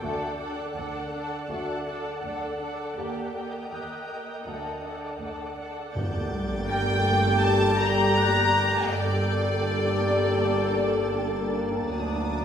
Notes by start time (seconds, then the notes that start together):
Already playing: D5
0.01 D2 A3 D4 F#4 A4 F#5
0.38 D4 A4 F#5
0.76 D2 D4 A4 F#5
1.13 D4 A4 F#5
1.49 D2 A3 D4 F#4 A4 F#5
1.87 D4 A4 F#5 A6
2.23 D2 D4 A4 F#5
2.60 D4 A4 F#5
2.97 D#2 A#3 G4 A#4 D#5 G5
3.35 A#3 G4 G5
3.72 D#2 A#3 G4 G5 F#6
4.09 A#3 G4 G5
4.45 D2 A3 D4 F#4 A4 D5 F#5
4.83 D4 A4 F#5
5.20 D2 D4 A4 F#5
5.57 D4 A4 F#5
5.93 G1 G2 G3 A3 A#3 G4 D5 G5 D6 G6 A6, sub drop
6.67 A#4 G5 A6
7.41 A5
7.79 A#5
8.17 F#6
8.90 G1 G2 A#3 D4 G4 A4 D5 G5 A5
9.29 G6
10.41 A4 D6
11.87 D2 F#3 D4 D6 D#6